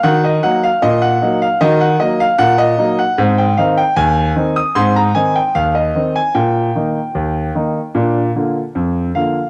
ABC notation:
X:1
M:2/4
L:1/16
Q:1/4=76
K:Eblyd
V:1 name="Grand piano"
_g e g f e g2 f | e _g e f g e2 g | [K:Ablyd] z g f g a3 e' | c' b a g f e2 a |
g8- | g4 z2 f2 |]
V:2 name="Grand piano"
[E,_G]2 [_G,B,E]2 B,,2 [G,B,E]2 | [E,_G]2 [_G,B,E]2 B,,2 [G,B,E]2 | [K:Ablyd] [A,,C]2 [E,CE]2 E,,2 [E,CE]2 | [A,,C]2 [E,CE]2 E,,2 [E,CE]2 |
B,,2 [E,B,E]2 E,,2 [E,B,E]2 | [B,,D]2 [D,B,F]2 F,,2 [D,B,F]2 |]